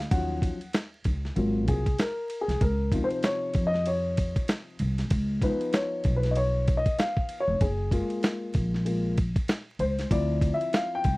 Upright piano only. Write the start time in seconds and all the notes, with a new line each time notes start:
0.11 F3 F#3 C#4 F#5
1.35 F#3 A#3 C4 F4
1.68 G#4
2.00 A#4
2.41 G#4
2.62 A#4
2.92 C3 F3 D#4
3.04 C5
3.24 C#5
3.67 D#5
3.87 C#5
5.42 F3 B3 D#4 B4
5.74 C#5
6.16 B4
6.31 D#5
6.37 C#5
6.77 D#5
6.99 F5
7.40 C#5
7.61 G#4
7.91 G#3 A#3 F4
8.85 G#3 A#3 F4
9.80 C5
10.10 F3 C4 E4 D5
10.54 E5
10.74 F5
10.95 G5